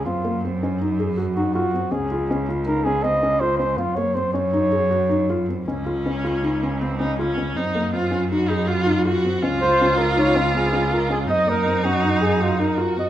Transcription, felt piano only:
\new Staff \with { instrumentName = "Felt piano" } { \time 5/4 \key ees \dorian \tempo 4 = 160 c'8 bes8 c'8 des'8 ees'8 aes'8 ges'8 ees'8 f'8 c'8 | des'8 f'8 des'8 f'8 ees'8 des'8 c'8 des'8 f'8 des'8 | c'8 bes8 c'8 des'8 ees'8 aes'8 ges'8 ees'8 f'8 c'8 | des'8 f'8 des'8 f'8 ees'8 des'8 c'8 des'8 f'8 des'8 |
c'8 bes8 c'8 des'8 ees'8 aes'8 ges'8 ees'8 f'8 c'8 | des'8 f'8 des'8 f'8 ees'8 des'8 c'8 des'8 f'8 des'8 | c'8 bes8 c'8 des'8 ees'8 aes'8 ges'8 ees'8 f'8 c'8 | }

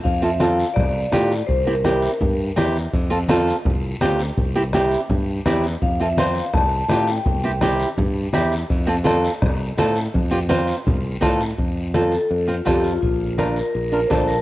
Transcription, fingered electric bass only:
\new Staff \with { instrumentName = "Fingered electric bass" } { \clef bass \time 4/4 \key f \major \tempo 4 = 166 f,2 c,4 a,4 | c,2 g,4 e,4 | f,2 c,4 d,4 | c,2 g,4 e,4 |
f,2 c,4 a,4 | c,2 g,4 e,4 | f,2 c,4 a,4 | f,2 c,4 a,4 |
f,2 f,4 f,4 | bes,,2 bes,,4 bes,,4 | }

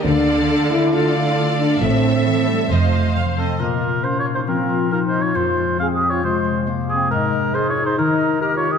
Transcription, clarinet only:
\new Staff \with { instrumentName = "Clarinet" } { \time 4/4 \key d \minor \tempo 4 = 137 r1 | r1 | \key bes \dorian bes4 des'4 c'4 ees'4 | f'4 c'4 aes4 bes4 |
aes4 aes'4 ees'4 g'4 | }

